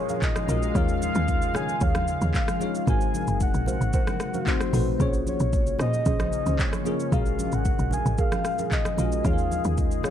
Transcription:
Already playing: ambient pad A#2 G#3 F5, tine electric piano G#3 C#4 F4 F#4 A#4, soft synth lead C#5
0.09 synth stab G#4 A#4 F5, high conga, shaker
0.22 soft synth lead D#5, kick, clap, low conga, shaker
0.36 cross-stick, high conga, shaker
0.47 log drum bass A#1, tine electric piano G#3 C#4 F4 F#4 A#4, synth stab G#4 A#4 F5, high conga, shaker
0.63 shaker
0.73 log drum bass D#2, ambient pad C#3, tine electric piano G#3 C#4 D#4 F4 A#4, synth stab G#4 C#5 F5, soft synth lead F5, kick, shaker
0.89 shaker
1.02 soft synth lead F5, high conga, shaker
1.15 log drum bass D#2, shaker
1.28 kick, low conga, shaker
1.42 shaker
1.54 log drum bass D#3, synth stab G#4 C#5 F5, soft synth lead G#5, cross-stick, high conga, low conga, shaker
1.69 shaker
1.81 log drum bass D#2, synth stab G#4 C#5 F5, soft synth lead F5, kick, shaker
1.95 cross-stick, high conga, shaker
2.08 shaker
2.21 log drum bass D#2, synth stab G#4 C#5 F5, high conga, shaker
2.34 soft synth lead F5, kick, clap, low conga, shaker
2.48 cross-stick, high conga, shaker
2.59 tine electric piano G#3 C#4 D#4 F4 C#5, synth stab G#4 C#5 F5, high conga, shaker
2.75 shaker
2.86 log drum bass G#1, ambient pad C3 F#3 A#3 F#4, tine electric piano G#3 C4 D#4 F#4 A#4, synth stab F#4 A#4 C5 F5, soft synth lead G#5, kick, shaker
3.01 shaker
3.14 high conga, shaker
3.27 log drum bass F#1, shaker
3.40 soft synth lead F#5, kick, low conga, shaker
3.54 log drum bass A#1, shaker
3.66 synth stab F#4 A#4 C5 F5, high conga, low conga, shaker
3.81 log drum bass G#1, shaker
3.93 synth stab F#4 A#4 C5 F#5, kick, low conga, shaker
4.07 cross-stick, high conga, shaker
4.20 cross-stick, shaker
4.34 synth stab F#4 A#4 C5 F5, high conga, shaker
4.45 tine electric piano A3 C4 D#4 F#4 C5, soft synth lead C5, kick, clap, low conga, shaker
4.60 cross-stick, high conga, shaker
4.71 log drum bass A1, tine electric piano A3 C4 D#4 F#4 B4, synth stab F#4 A4 C5, mid tom, open hi-hat, high conga, shaker
4.98 log drum bass A#1, ambient pad C#3 G#3 C#4, tine electric piano A#3 C#4 F4 G#4 C#5, synth stab C#4 G#4 C5, soft synth lead C#5, kick, shaker
5.13 shaker
5.27 soft synth lead C#5, high conga, shaker
5.40 log drum bass A#1, shaker
5.53 kick, low conga, shaker
5.67 shaker
5.79 log drum bass A#2, synth stab C#4 G#4 C5, soft synth lead D#5, cross-stick, high conga, low conga, shaker
5.94 shaker
6.06 log drum bass A#1, synth stab C#4 G#4 C5, kick, shaker
6.20 cross-stick, high conga, shaker
6.33 shaker
6.46 log drum bass C#2, synth stab C#4 G#4 C5, high conga, shaker
6.59 soft synth lead C#5, kick, clap, low conga, shaker
6.73 cross-stick, high conga, shaker
6.84 tine electric piano A#3 C#4 F4 G#4 A#4, synth stab C#4 G#4 C5, high conga, shaker
7.00 shaker
7.11 log drum bass A#1, ambient pad A#2 G#4, tine electric piano G#3 C#4 F#4 G#4 A#4, synth stab G#4 A#4 F5, soft synth lead F5, kick, shaker
7.26 shaker
7.39 high conga, shaker
7.52 log drum bass G#1, soft synth lead F#5, shaker
7.65 kick, low conga, shaker
7.79 log drum bass A#1, shaker
7.91 synth stab G#4 A#4 F5, soft synth lead G#5, high conga, low conga, shaker
8.06 log drum bass G#1, shaker
8.18 synth stab G#4 A#4 F5, soft synth lead F5, kick, shaker
8.32 cross-stick, high conga, shaker
8.45 cross-stick, shaker
8.58 synth stab G#4 A#4 F5, high conga, shaker
8.71 soft synth lead D#5, kick, clap, low conga, shaker
8.85 cross-stick, high conga, shaker
8.96 log drum bass A#1, tine electric piano G#3 C#4 F4 F#4 A#4, synth stab G#4 A#4 F5, high conga, shaker
9.12 shaker
9.23 log drum bass D#2, ambient pad C#3, tine electric piano G#3 C#4 D#4 F4 G#4, synth stab G#4 C#5 F5, soft synth lead F5, kick, shaker
9.33 tine electric piano A#4
9.38 shaker
9.51 soft synth lead F5, high conga, shaker
9.64 log drum bass D#2, shaker
9.78 soft synth lead D#5, kick, low conga, shaker
9.91 shaker
10.03 log drum bass D#3, synth stab G#4 C#5 F5, cross-stick, high conga, low conga, shaker

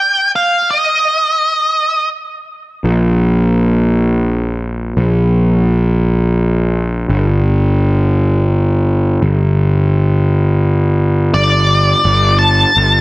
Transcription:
Already playing: lead electric guitar G5
0.36 lead electric guitar F5
0.71 lead electric guitar D#5
2.84 picked electric bass A#1
4.97 picked electric bass A#1
7.09 picked electric bass G1
9.22 picked electric bass G1
11.34 picked electric bass G1, lead electric guitar D5
12.05 picked electric bass G1
12.39 lead electric guitar A5
12.77 picked electric bass G1

